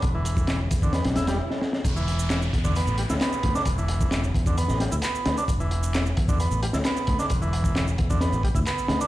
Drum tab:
HH |x-x-x-x-xxxx----|x-x-x-x-x-x-x-x-|x-x-x-x-x-x-x-x-|x-x-x-x-x-x-x-x-|
SH |x-xxx-xxx-xx----|xx-xxx-xxx-xxx-x|xx-xxx-xxx-xxx-x|xx-xxx-xxx-xxx-x|
CP |----x-----------|----x-------x---|----x-------x---|----x-------x---|
SD |----o---oooo-ooo|----o------oo--o|----o----oo---o-|----o------oo--o|
BD |o--o--oo--------|o-----oo------o-|o--o--oo--------|o-----oo------o-|

HH |x-x-x-x-x-x-x-x-|
SH |xx-xxx-xxx-xxx-x|
CP |----x-------x---|
SD |----o---o-----o-|
BD |o--o--oo--oo----|